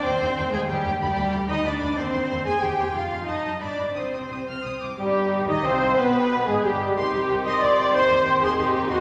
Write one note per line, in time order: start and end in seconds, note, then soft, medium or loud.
0.04 0.11 D#2 medium
0.04 0.54 C4 medium
0.04 0.53 C5 loud
0.04 0.10 G5 medium
0.20 0.27 D#2 medium
0.20 0.28 D#2 medium
0.20 0.28 G5 medium
0.37 0.44 D#2 medium
0.37 0.44 G5 medium
0.53 0.60 D#2 medium
0.53 0.70 G#3 medium
0.53 0.60 G#4 medium
0.53 0.60 G5 medium
0.69 0.76 D#2 medium
0.69 1.01 G3 medium
0.69 1.01 G4 medium
0.69 0.76 G5 medium
0.85 0.92 D#2 medium
0.85 0.92 G5 medium
1.01 1.07 D2 medium
1.01 1.08 D2 medium
1.01 1.48 G3 medium
1.01 1.48 G4 medium
1.01 1.08 B5 medium
1.16 1.23 D2 medium
1.16 1.24 D2 medium
1.16 1.23 B5 medium
1.32 1.40 D2 medium
1.32 1.39 B5 medium
1.49 1.55 D2 medium
1.49 1.65 D#4 medium
1.49 1.65 D#5 loud
1.49 1.55 B5 medium
1.64 1.71 D2 medium
1.64 1.72 D2 medium
1.64 1.98 D4 medium
1.64 1.98 D5 medium
1.64 1.70 B5 medium
1.81 1.88 D2 medium
1.81 1.89 D2 medium
1.81 1.88 B5 medium
1.98 2.04 D#2 medium
1.98 2.05 D#2 medium
1.98 2.47 C4 medium
1.98 2.47 C5 medium
1.98 2.05 C6 medium
2.13 2.20 D#2 medium
2.13 2.21 D#2 medium
2.13 2.20 C6 medium
2.30 2.36 D#2 medium
2.30 2.37 D#2 medium
2.30 2.37 C6 medium
2.46 2.53 D#2 medium
2.46 2.62 G#4 medium
2.46 2.63 G#5 medium
2.46 2.52 C6 medium
2.62 2.69 D#2 medium
2.62 2.95 G4 medium
2.62 2.95 G5 medium
2.62 2.69 C6 medium
2.79 2.85 D#2 medium
2.79 2.86 C6 soft
2.94 3.01 F1 medium
2.94 3.02 F2 medium
2.94 3.27 F4 medium
2.94 3.28 F5 medium
2.94 3.03 C6 soft
3.11 3.18 F1 medium
3.11 3.18 F2 medium
3.11 3.19 C6 soft
3.26 3.33 F#1 soft
3.26 3.34 F#2 medium
3.26 3.60 D#4 medium
3.26 3.60 D#5 medium
3.26 3.34 A5 soft
3.44 3.51 F#1 soft
3.44 3.51 F#2 soft
3.44 3.51 A5 soft
3.60 3.68 G1 soft
3.60 3.68 G2 soft
3.60 3.95 D4 medium
3.60 3.95 D5 medium
3.60 3.67 B5 soft
3.79 3.86 G1 soft
3.79 3.86 G2 soft
3.79 3.86 B5 soft
3.95 4.03 C2 soft
3.95 4.02 C3 soft
3.95 4.81 C4 soft
3.95 4.81 C5 medium
3.95 4.02 D#6 soft
4.13 4.21 C2 soft
4.13 4.20 C3 soft
4.13 4.22 D#6 soft
4.31 4.38 C2 soft
4.31 4.38 C3 soft
4.31 4.38 D#6 soft
4.48 4.55 C2 soft
4.48 4.55 C3 soft
4.48 4.66 F6 soft
4.65 4.72 C2 soft
4.65 4.72 C3 soft
4.65 4.83 D#6 soft
4.82 4.89 C2 soft
4.82 4.89 C3 soft
4.82 5.01 D6 soft
4.98 5.45 G1 medium
4.98 5.45 G2 medium
4.98 5.45 G3 medium
4.98 5.50 G3 medium
4.98 5.62 D#4 medium
4.98 5.45 G4 medium
4.98 5.46 G4 medium
5.48 5.65 D#2 medium
5.48 5.65 D#3 medium
5.48 5.65 D#4 medium
5.48 5.67 D#4 medium
5.48 5.66 D#4 medium
5.48 5.65 D#5 medium
5.48 5.66 D#5 medium
5.64 5.98 C2 medium
5.64 5.98 C3 medium
5.64 5.98 C4 medium
5.64 6.00 C4 medium
5.64 5.98 C4 medium
5.64 5.98 F4 medium
5.64 5.98 C5 medium
5.64 5.99 C5 medium
5.97 6.46 B1 medium
5.97 6.47 B2 medium
5.97 6.46 B3 medium
5.97 6.48 B3 medium
5.97 6.47 B3 medium
5.97 6.31 G4 medium
5.97 6.46 B4 medium
5.97 6.48 B4 medium
5.97 6.47 B4 medium
6.32 6.64 B3 medium
6.46 6.54 G#1 medium
6.46 6.55 G#2 medium
6.46 6.65 G#3 medium
6.46 6.64 G#3 medium
6.46 6.63 G#3 medium
6.46 6.64 G#4 medium
6.63 6.96 G1 medium
6.63 6.97 G2 medium
6.63 6.96 G3 medium
6.63 6.97 G3 medium
6.63 6.98 G3 medium
6.63 6.97 D4 medium
6.63 6.96 G4 medium
6.97 7.03 C2 medium
6.97 7.04 C2 medium
6.97 8.86 D#3 medium
6.97 8.87 D#3 medium
6.97 8.87 C4 medium
6.97 7.61 D#4 medium
6.97 7.45 G4 medium
6.97 8.87 G4 medium
6.97 7.13 C6 medium
6.97 8.87 C6 medium
7.12 7.19 C2 soft
7.12 7.21 C2 medium
7.12 7.21 C6 soft
7.28 7.35 C2 soft
7.28 7.37 C2 medium
7.28 7.36 G5 medium
7.46 7.52 C2 medium
7.46 7.53 C2 medium
7.46 7.63 D#5 medium
7.46 7.62 C6 medium
7.62 7.69 C2 soft
7.62 7.95 F4 medium
7.62 7.94 D5 medium
7.62 7.70 C6 medium
7.78 7.85 C2 medium
7.78 7.87 G5 medium
7.94 8.00 D#2 medium
7.94 8.26 D#4 medium
7.94 8.41 C5 medium
7.94 8.10 C6 medium
8.10 8.17 D#2 medium
8.10 8.18 C6 medium
8.26 8.33 D#2 medium
8.26 8.58 G4 medium
8.26 8.34 G5 medium
8.41 8.48 D#2 medium
8.41 8.58 G#4 medium
8.41 8.58 C6 medium
8.57 8.64 D#2 medium
8.57 9.00 D#4 medium
8.57 8.91 G4 medium
8.57 8.66 C6 medium
8.74 8.80 D#2 medium
8.74 8.82 G5 medium
8.90 8.96 D#2 medium
8.90 9.00 D#3 medium
8.90 9.00 C4 medium
8.90 9.00 F#4 loud
8.90 9.00 F#4 medium
8.90 9.00 C6 medium
8.90 8.98 C6 medium